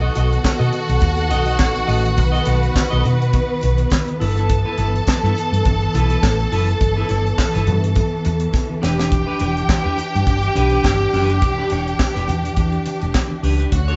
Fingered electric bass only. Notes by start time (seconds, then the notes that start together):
0.16 B1
0.45 muted fingered electric bass stroke
0.60 B2
0.89 B1
1.02 D#2
1.32 B1
1.60 A1
1.88 A1
2.18 B1
2.47 B1
2.93 B1
3.05 B2
3.63 B1
4.21 G1
4.78 G1
5.08 muted fingered electric bass stroke
5.24 G2
5.52 G2
5.66 G1
5.95 B1
6.23 A1
6.52 F#1
6.81 G1
7.10 G1
7.55 G1
7.67 G2
8.26 E2
8.83 E1
9.41 E1
9.69 muted fingered electric bass stroke
9.86 E2
10.15 G2
10.27 G1
10.57 B1
10.85 G1
11.13 F#1
11.43 E1
11.72 E1
12.17 E1
12.29 E2
12.57 E2
13.02 E1
13.43 C#2
13.72 D2